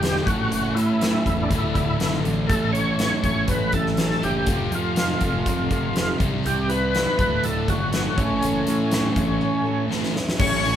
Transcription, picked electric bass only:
0.00 0.18 E1 medium
0.27 0.47 A1 medium
0.51 0.71 F#1 medium
0.76 1.16 A2 medium
1.26 1.46 E1 medium
1.51 1.71 D1 medium
1.75 1.96 D1 medium
2.00 2.22 F#1 medium
2.25 2.47 A1 medium
2.49 3.10 A1 medium
3.24 3.44 A1 medium
3.48 3.69 A1 medium
3.73 4.14 A1 medium
4.23 4.43 F#1 medium
4.47 4.67 F1 medium
4.72 5.12 F2 medium
5.22 5.42 F1 loud
5.46 5.66 F1 medium
5.71 6.11 F1 medium
6.21 6.41 C2 medium
6.46 7.06 C2 loud
7.19 7.39 D1 medium
7.44 7.64 D1 medium
7.68 8.09 G1 medium
8.18 8.38 A1 medium
8.43 8.63 F#1 medium
8.68 9.08 A2 medium
9.17 9.37 A1 medium
10.40 10.76 A1 medium

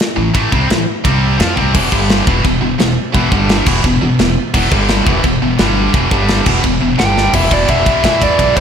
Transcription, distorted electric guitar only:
0.16 0.31 A2 medium
0.16 0.31 E3 medium
0.34 0.51 A2 medium
0.34 0.51 E3 loud
0.34 0.52 A3 loud
0.51 0.69 C3 medium
0.51 0.69 G3 medium
0.51 0.69 C4 medium
0.69 0.83 A2 medium
0.69 0.83 E3 medium
1.04 1.38 C3 medium
1.04 1.39 G3 loud
1.04 1.38 C4 loud
1.38 1.56 F3 medium
1.38 1.56 C4 medium
1.38 1.57 F4 medium
1.56 1.74 C3 medium
1.56 1.74 G3 medium
1.56 1.74 C4 loud
1.74 1.90 E2 medium
1.74 1.91 B2 loud
1.74 1.91 E3 loud
1.91 2.26 G2 medium
1.91 2.26 D3 medium
1.91 2.26 G3 medium
2.26 2.43 E2 medium
2.26 2.44 B2 medium
2.26 2.44 E3 medium
2.44 2.59 E2 medium
2.44 2.59 B2 medium
2.61 2.76 E2 medium
2.61 2.76 B2 medium
2.79 2.93 E2 medium
2.79 2.93 B2 medium
3.14 3.31 E2 medium
3.14 3.32 B2 loud
3.14 3.32 E3 loud
3.32 3.66 G2 medium
3.32 3.67 D3 medium
3.32 3.67 G3 medium
3.67 3.83 E2 medium
3.67 3.83 B2 medium
3.67 3.84 E3 loud
3.84 3.98 E2 medium
3.84 3.98 B2 medium
4.01 4.16 E2 medium
4.01 4.16 B2 medium
4.19 4.33 E2 medium
4.19 4.33 B2 medium
4.54 4.71 E2 medium
4.54 4.71 B2 loud
4.54 4.72 E3 loud
4.71 5.06 G2 medium
4.71 5.06 D3 loud
4.71 5.07 G3 loud
5.06 5.23 E2 medium
5.06 5.23 B2 medium
5.06 5.24 E3 medium
5.24 5.38 E2 medium
5.24 5.38 B2 medium
5.42 5.56 E2 medium
5.42 5.56 B2 medium
5.59 5.93 G2 medium
5.59 5.94 D3 medium
5.59 5.94 G3 loud
5.94 6.10 E2 loud
5.94 6.11 B2 loud
5.94 6.11 E3 loud
6.11 6.45 G2 medium
6.11 6.46 D3 medium
6.11 6.46 G3 loud
6.46 6.62 E2 medium
6.46 6.62 B2 medium
6.46 6.64 E3 loud
6.63 6.78 E2 medium
6.63 6.78 B2 medium
6.81 6.95 E2 medium
6.81 6.95 B2 medium
6.98 7.33 G2 medium
6.98 7.33 D3 medium
6.98 7.34 G3 medium
7.33 7.68 E2 medium
7.33 7.68 B2 loud
7.33 7.69 E3 loud
7.69 7.84 E2 medium
7.69 7.85 B2 medium
7.69 7.87 E3 medium
7.86 8.02 E2 medium
7.86 8.03 B2 medium
7.86 8.04 E3 medium
8.03 8.37 E2 loud
8.03 8.38 B2 loud
8.03 8.39 E3 loud
8.38 8.54 E2 medium
8.38 8.54 B2 medium
8.38 8.56 E3 medium
8.55 8.60 E2 medium
8.55 8.60 B2 medium
8.55 8.60 E3 medium

